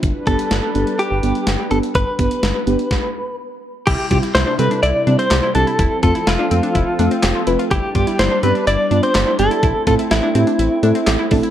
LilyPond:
<<
  \new Staff \with { instrumentName = "Clean electric guitar" } { \time 4/4 \key c \major \tempo 4 = 125 r8 a'4. g'4. a'8 | b'2. r4 | g'8 g'8 c''8 b'8 d''8. c''8. a'8~ | a'8 a'8 f'2~ f'8 r8 |
g'8 g'8 c''8 b'8 d''8. c''8. a'8~ | a'8 a'8 e'2~ e'8 r8 | }
  \new Staff \with { instrumentName = "Synth arpeggio sound" } { \time 4/4 \key c \major r1 | r1 | e'8 f'16 e'16 e'16 d'16 c'16 d'16 e'8 d'16 c'16 g'16 e'16 d'16 e'16 | e'8 f'16 e'16 e'16 d'16 c'16 d'16 e'8 d'16 c'16 g'16 f'16 e'16 f'16 |
e'8 f'16 e'16 e'16 d'16 c'16 d'16 e'8 d'16 c'16 g'16 e'16 d'16 e'16 | e'8 f'16 e'16 e'16 d'16 c'16 d'16 e'8 d'16 c'16 g'16 e'16 d'16 e'16 | }
  \new Staff \with { instrumentName = "Synth keys" } { \time 4/4 \key c \major r8 <b d' g'>16 r8. <b d' g'>16 r8. <b d' g'>16 r8. <b d' g'>16 r16 | r8 <b d' g'>16 r8. <b d' g'>16 r2 r16 | r8 <g c' e' g'>16 r8. <g c' e' a'>16 r8. <g c' e' g'>16 r8. <g c' e' g'>16 r16 | r8 <a c' f' a'>16 r8. <a c' f' a'>16 r8. <a c' f' a'>16 r8. <a c' f' b'>16 r16 |
r8 <g b d' g'>16 r8. <g b d' g'>16 r8. <g b d' f'>16 r8. <g b d' g'>16 r16 | r8 <a c' e' a'>16 r8. <a c' e' g'>16 r8. <a c' e' a'>16 r8. <a c' e' a'>16 r16 | }
  \new Staff \with { instrumentName = "Analog synth pad" } { \time 4/4 \key c \major <g d' b'>1~ | <g d' b'>2 r2 | <c g e'>1 | <f c' a'>1 |
<g d' d''>1 | <a c' e'>1 | }
  \new Staff \with { instrumentName = "Analog synth bass" } { \clef bass \time 4/4 \key c \major g,,16 r16 g,,16 r16 g,,16 r16 g,,16 r8 g,,16 g,,16 r16 g,,16 r16 g,,16 r16 | g,,16 r16 g,,16 r16 g,,16 r16 g,,16 r2 r16 | c,16 r16 c16 r16 c,16 r16 c16 r16 c,16 r16 c16 r16 c,16 r16 c,16 r16 | f,,16 r16 f,16 r16 f,,16 r16 f,16 r16 f,,16 r16 f,16 r16 f,,16 r16 f,,16 r16 |
g,,16 r16 g,16 r16 g,,16 r16 g,16 r16 g,,16 r16 g,16 r16 g,,16 r16 g,,16 r16 | a,,16 r16 a,16 r16 a,,16 r16 a,16 r16 a,,16 r16 a,16 r16 a,,16 r16 a,,16 r16 | }
  \new DrumStaff \with { instrumentName = "Drums" } \drummode { \time 4/4 <hh bd>8 <hh bd>16 hh16 <hh sn>8 hh16 hh16 hh8 hh16 hh16 <hh sn>8 hh16 hh16 | <hh bd>8 <hh bd>16 hh16 <hh sn>8 hh16 hh16 <bd sn>4 r4 | <cymc hh bd>8 <hh bd>16 hh16 <hh sn>8 hh16 hh16 hh8 hh16 hh16 <hc hh sn>8 hh16 hh16 | <hh bd>8 <hh bd>16 hh16 <hh sn>8 hh16 hh16 <hh bd>8 hh16 hh16 <hc hh sn>8 hh16 hh16 |
<hh bd>8 <hh bd>16 hh16 <hh sn>8 hh16 hh16 hh8 hh16 hh16 <hc hh sn>8 hh16 hh16 | <hh bd>8 <hh bd>16 hh16 <hh sn>8 hh16 hh16 hh8 hh16 hh16 <hc hh sn>8 <hho bd>16 hh16 | }
>>